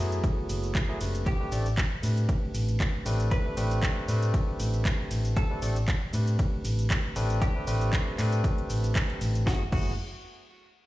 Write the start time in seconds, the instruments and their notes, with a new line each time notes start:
Already playing: tine electric piano F#3 A3
0.00 fingered electric bass F#2, tine electric piano B3 E4 G#4
0.12 closed hi-hat, cabasa
0.24 kick, closed hi-hat, ride, cabasa
0.49 fingered electric bass F#1, open hi-hat, ride, cabasa
0.63 closed hi-hat, cabasa
0.75 kick, clap, closed hi-hat, ride, cabasa
0.89 tine electric piano F#3 A3 B3 E4 G#4
1.00 fingered electric bass F#1, tine electric piano A3 C4 D4 G4 B4, open hi-hat, ride, cabasa
1.15 closed hi-hat, cabasa
1.26 clean electric guitar G4, kick, closed hi-hat, ride, cabasa
1.40 tine electric piano A3 C4 D4 G4 B4
1.51 fingered electric bass A1, tine electric piano A3 C4 D4 G4 D5, open hi-hat, ride, cabasa
1.66 closed hi-hat, cabasa
1.78 kick, clap, closed hi-hat, ride, cabasa
2.02 fingered electric bass A2, tine electric piano A3 C4 D4 G4 B4, open hi-hat, ride, cabasa
2.17 closed hi-hat, cabasa
2.29 kick, closed hi-hat, ride, cabasa
2.54 fingered electric bass A1, open hi-hat, ride, cabasa
2.69 closed hi-hat, cabasa
2.80 kick, clap, closed hi-hat, ride, cabasa
3.05 fingered electric bass A1, tine electric piano A3 C4 D4 G4 B4, open hi-hat, ride, cabasa
3.20 closed hi-hat, cabasa
3.31 clean electric guitar B4, kick, closed hi-hat, ride, cabasa
3.45 tine electric piano A3 C4 D4 G4 B4
3.57 fingered electric bass A1, tine electric piano A3 C4 D4 G4 B4, open hi-hat, ride, cabasa
3.71 closed hi-hat, cabasa
3.83 kick, clap, closed hi-hat, ride, cabasa
4.07 fingered electric bass A2, tine electric piano A3 C4 D4 G4 B4, open hi-hat, ride, cabasa
4.22 closed hi-hat, cabasa
4.34 kick, closed hi-hat, ride, cabasa
4.60 fingered electric bass A1, open hi-hat, ride, cabasa
4.74 closed hi-hat, cabasa
4.85 kick, clap, closed hi-hat, ride, cabasa
5.11 fingered electric bass A1, open hi-hat, ride, cabasa
5.25 closed hi-hat, cabasa
5.37 clean electric guitar A4, kick, closed hi-hat, ride, cabasa
5.50 tine electric piano A3 C4 D4 G4 B4
5.62 fingered electric bass A1, tine electric piano A3 C4 D4 G4 D5, open hi-hat, ride, cabasa
5.76 closed hi-hat, cabasa
5.88 kick, clap, closed hi-hat, ride, cabasa
6.13 fingered electric bass A2, tine electric piano A3 C4 D4 G4 B4, open hi-hat, ride, cabasa
6.27 closed hi-hat, cabasa
6.39 kick, closed hi-hat, ride, cabasa
6.65 fingered electric bass A1, open hi-hat, ride, cabasa
6.79 closed hi-hat, cabasa
6.90 kick, clap, closed hi-hat, ride, cabasa
7.16 fingered electric bass A1, tine electric piano A3 C4 D4 G4 B4, open hi-hat, ride, cabasa
7.30 closed hi-hat, cabasa
7.42 clean electric guitar G4, kick, closed hi-hat, ride, cabasa
7.55 tine electric piano A3 C4 D4 G4 B4
7.67 fingered electric bass A1, tine electric piano A3 C4 D4 G4 B4, open hi-hat, ride, cabasa
7.81 closed hi-hat, cabasa
7.93 kick, clap, closed hi-hat, ride, cabasa
8.18 fingered electric bass A2, tine electric piano A3 C4 D4 G4 B4, clap, open hi-hat, ride, cabasa
8.33 closed hi-hat, cabasa
8.44 kick, closed hi-hat, ride, cabasa
8.58 closed hi-hat
8.70 fingered electric bass A1, open hi-hat, ride, cabasa
8.84 closed hi-hat, cabasa
8.95 kick, clap, closed hi-hat, ride, cabasa
9.10 closed hi-hat
9.21 fingered electric bass A1, open hi-hat, ride, cabasa
9.35 closed hi-hat, cabasa
9.46 fingered electric bass F#1, tine electric piano F#3 A3 B3 E4 G#4, clean electric guitar F#4, kick, snare
9.71 fingered electric bass F#1, tine electric piano F#3 A3 B3 E4 G#4, clean electric guitar F#4, kick, crash